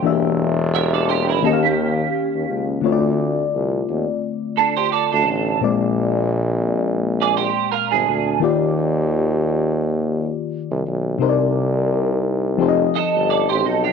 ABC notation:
X:1
M:4/4
L:1/16
Q:"Swing 16ths" 1/4=86
K:Bb
V:1 name="Clean electric guitar"
z4 [B=e] [Ad] [Gc] [=EB] [_EA] [_DG]6 z | z8 z2 [DA] [Gc] [Ad] [DA]3 | z8 z [_Ad] [Gc]2 [FB] [DA]3 | z16 |
z8 z2 [Ae]2 [Ad] [Gc] [EA] [DG] |]
V:2 name="FM electric piano"
[=E,B,D_G=G=e]8 [_E,B,_DG_ef]8 | [D,A,CF_d=d]16 | [B,,_A,B,Cd]16 | [E,B,FGd]16 |
[C,CEBcd]8 [F,CEGAce]8 |]
V:3 name="Tuba" clef=bass
=E,,,8 _E,,4 z E,, _D,,2 | D,,4 C,,2 E,, z6 D,, A,,,2 | B,,,8- B,,,3 z2 G,,, D,,2 | E,,8- E,,3 z2 C,, _C,,2 |
C,,8 F,,,2 G,,, G,,,2 A,,, _C,,2 |]